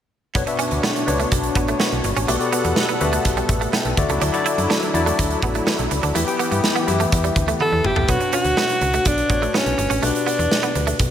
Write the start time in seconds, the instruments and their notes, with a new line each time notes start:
0.35 fm bass B1, tine electric piano B2 D4 F#4 B4 C#5, analog synth pad B3 D4 C#5, clean electric guitar B3, kick, closed hi-hat
0.46 tine electric piano D4 F#4 B4 E5, muted clean electric guitar stroke, closed hi-hat
0.59 clean electric guitar C#4, closed hi-hat
0.71 fm bass D2, closed hi-hat
0.83 clean electric guitar B3, snare
0.96 closed hi-hat
1.06 fm bass C#2, tine electric piano D4 F#4 B4 C#5, muted clean electric guitar stroke, closed hi-hat
1.20 clean electric guitar A3, closed hi-hat
1.32 fm bass B1, muted clean electric guitar stroke, kick, closed hi-hat
1.43 closed hi-hat
1.55 fm bass A1, clean electric guitar B3, kick, closed hi-hat
1.68 clean electric guitar A3, closed hi-hat
1.80 clean electric guitar B3, snare
1.92 fm bass B1, closed hi-hat
2.04 fm bass G1, muted clean electric guitar stroke, closed hi-hat
2.17 fm bass A1, clean electric guitar C#4, closed hi-hat
2.28 fm bass B1, tine electric piano B2 F#4 G4 B4 D5, clean electric guitar A3, analog synth pad B3 A4 F#5, closed hi-hat
2.40 tine electric piano F#4 G4 A4 D5, closed hi-hat
2.46 tine electric piano B4
2.53 clean electric guitar B3, closed hi-hat
2.64 fm bass E2, muted clean electric guitar stroke, closed hi-hat
2.76 snare
2.89 clean electric guitar B3, closed hi-hat
3.00 fm bass D2, tine electric piano F#4 G4 B4 E5, muted clean electric guitar stroke, closed hi-hat
3.13 clean electric guitar A3, closed hi-hat
3.25 fm bass B1, kick, closed hi-hat
3.37 clean electric guitar G3, closed hi-hat
3.49 fm bass A1, muted clean electric guitar stroke, kick, closed hi-hat
3.61 clean electric guitar A3, closed hi-hat
3.73 clean electric guitar B3, tine electric piano G5, snare
3.85 fm bass B1, muted clean electric guitar stroke, closed hi-hat
3.97 fm bass D2, tine electric piano D3 E4 F#4 A4 D5 E5, analog synth pad F#3 D4 E4, kick, closed hi-hat
4.09 fm bass C#2, clean electric guitar A3, closed hi-hat
4.21 fm bass D2, clean electric guitar D4, closed hi-hat
4.33 tine electric piano E4 F#4 A4 D5, muted clean electric guitar stroke, closed hi-hat
4.46 clean electric guitar E4, closed hi-hat
4.58 fm bass F#2, closed hi-hat
4.70 clean electric guitar D4, snare
4.83 closed hi-hat
4.94 fm bass E2, tine electric piano E4 F#4 A4 D5, muted clean electric guitar stroke, closed hi-hat
5.06 clean electric guitar A3, closed hi-hat
5.19 fm bass D2, muted clean electric guitar stroke, kick, closed hi-hat
5.30 closed hi-hat
5.42 fm bass A1, clean electric guitar B3, kick, closed hi-hat
5.55 clean electric guitar A3, closed hi-hat
5.67 clean electric guitar B3, snare
5.79 fm bass B1, closed hi-hat
5.91 fm bass C#2, muted clean electric guitar stroke, closed hi-hat
6.03 fm bass D2, clean electric guitar D4, closed hi-hat
6.15 fm bass E2, tine electric piano E3 E4 G4 B4 E5, analog synth pad E3 B3 G4, clean electric guitar A3, closed hi-hat
6.26 tine electric piano E4 G4 B4 G5, closed hi-hat
6.39 clean electric guitar B3, closed hi-hat
6.51 fm bass G2, muted clean electric guitar stroke, closed hi-hat
6.64 snare
6.76 clean electric guitar B3, closed hi-hat
6.87 fm bass F#2, tine electric piano E4 G4 B4 E5, muted clean electric guitar stroke, closed hi-hat
7.00 clean electric guitar A3, closed hi-hat
7.12 fm bass E2, kick, closed hi-hat
7.24 clean electric guitar G3, closed hi-hat
7.36 fm bass D2, muted clean electric guitar stroke, kick, closed hi-hat
7.48 clean electric guitar A3, closed hi-hat
7.60 clean electric guitar B3, alto saxophone A4, tine electric piano B5, high tom
7.72 fm bass E2, muted clean electric guitar stroke
7.84 fm bass G1, alto saxophone G4, tine electric piano E5, mid tom
7.96 fm bass A1, clean electric guitar A3, floor tom
8.08 fm bass B1, tine electric piano B2 D4 F#4 B4 C#5, clean electric guitar B3, alto saxophone F#4, kick, closed hi-hat
8.20 muted clean electric guitar stroke, closed hi-hat
8.33 clean electric guitar C#4, alto saxophone F#4, closed hi-hat
8.44 fm bass D2, closed hi-hat
8.57 clean electric guitar B3, snare
8.69 closed hi-hat
8.81 fm bass C#2, muted clean electric guitar stroke, closed hi-hat
8.93 clean electric guitar A3, closed hi-hat
9.05 fm bass B1, alto saxophone D4, muted clean electric guitar stroke, kick, closed hi-hat
9.18 closed hi-hat
9.29 fm bass A1, clean electric guitar B3, tine electric piano D4 F#4 B4 C#5, kick, closed hi-hat
9.42 clean electric guitar A3, closed hi-hat
9.47 alto saxophone D4
9.54 clean electric guitar B3, alto saxophone C#4, snare
9.66 fm bass B1, closed hi-hat
9.78 fm bass G1, muted clean electric guitar stroke, closed hi-hat
9.90 fm bass A1, clean electric guitar C#4, closed hi-hat
10.02 fm bass B1, tine electric piano B2 D4 F#4 G4 B4, clean electric guitar A3, alto saxophone D4, closed hi-hat
10.15 closed hi-hat
10.27 clean electric guitar B3, closed hi-hat
10.39 fm bass E2, muted clean electric guitar stroke, closed hi-hat
10.51 snare
10.63 clean electric guitar B3, closed hi-hat
10.75 fm bass D2, muted clean electric guitar stroke, closed hi-hat
10.87 clean electric guitar A3, closed hi-hat
10.99 fm bass B1, kick, closed hi-hat